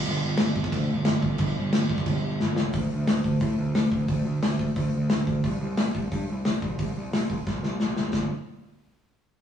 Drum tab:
CC |x---x---x---x---|x---x---x-------|----------------|----------------|
HH |----------------|----------------|o---o---o---o---|o---o---o---o---|
SD |----o-------o---|----o-------o-o-|----o-------o---|----o-------o---|
BD |------ooo-----o-|o-----ooo-------|o-----o-o-----o-|o-----o-o-----o-|

CC |----------------|----------------|----------------|
HH |o---o---o---o---|o---o-----------|----------------|
SD |----o-------o---|----o---o-o-o-o-|o---------------|
BD |o-----o-o-----o-|o-----o-o-------|o---------------|